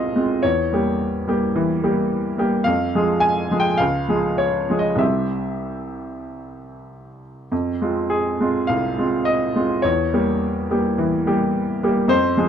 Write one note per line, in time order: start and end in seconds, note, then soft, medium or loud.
0.00 0.46 C2 soft
0.00 0.46 F2 soft
0.00 0.16 G#3 soft
0.00 0.16 C4 soft
0.00 0.16 F4 soft
0.00 0.46 G#4 soft
0.00 0.43 D#5 medium
0.00 0.47 F5 medium
0.16 0.41 G#3 soft
0.16 0.41 C4 soft
0.16 0.42 F4 soft
0.43 0.72 E2 soft
0.43 2.38 C#5 medium
0.73 1.24 G3 soft
0.73 1.25 A#3 soft
0.73 1.25 G4 soft
1.28 1.53 G3 soft
1.28 1.53 A#3 soft
1.28 1.53 G4 soft
1.56 1.82 E3 soft
1.83 2.34 G3 soft
1.83 2.34 A#3 soft
1.83 2.35 G4 soft
2.38 2.63 G3 soft
2.38 2.64 A#3 soft
2.38 2.64 G4 soft
2.64 2.93 F2 soft
2.64 3.21 F5 medium
2.95 3.47 F3 soft
2.95 3.47 G#3 soft
2.95 3.47 G#4 soft
3.20 3.59 G#5 medium
3.51 3.77 F3 soft
3.51 3.77 G#3 soft
3.51 3.77 G#4 soft
3.60 3.79 G5 medium
3.78 4.08 C#2 soft
3.78 4.39 F5 medium
4.08 4.66 F3 soft
4.08 4.66 G#3 soft
4.08 4.66 G#4 soft
4.38 4.79 C#5 medium
4.70 4.98 F3 soft
4.70 4.98 G#3 soft
4.70 4.98 G#4 soft
4.79 5.00 D#5 soft
4.95 7.44 C2 soft
4.95 7.45 G3 soft
4.95 7.46 C4 soft
4.95 7.46 G4 soft
4.95 7.20 E5 soft
7.52 7.80 F2 soft
7.82 8.36 G#3 soft
7.82 8.37 C4 soft
7.82 8.37 F4 soft
8.10 8.69 G#4 soft
8.41 8.67 G#3 soft
8.41 8.67 C4 soft
8.41 8.67 F4 soft
8.67 8.98 C2 soft
8.67 9.26 F5 medium
8.98 9.52 G#3 soft
8.98 9.52 C4 soft
8.98 9.52 F4 soft
9.25 9.83 D#5 medium
9.56 9.81 G#3 soft
9.56 9.82 C4 soft
9.56 9.82 F4 soft
9.82 10.12 E2 soft
9.82 11.82 C#5 medium
10.13 10.66 G3 soft
10.13 10.66 A#3 soft
10.13 10.66 G4 soft
10.71 10.96 G3 soft
10.71 10.96 A#3 soft
10.71 10.96 G4 soft
10.98 11.26 E3 soft
11.27 11.79 G3 soft
11.27 11.79 A#3 soft
11.27 11.79 G4 soft
11.83 12.08 G3 soft
11.83 12.08 A#3 soft
11.83 12.08 G4 soft
12.08 12.35 F2 soft
12.08 12.49 C5 medium
12.37 12.49 F3 soft
12.37 12.49 G#3 soft
12.37 12.49 G#4 soft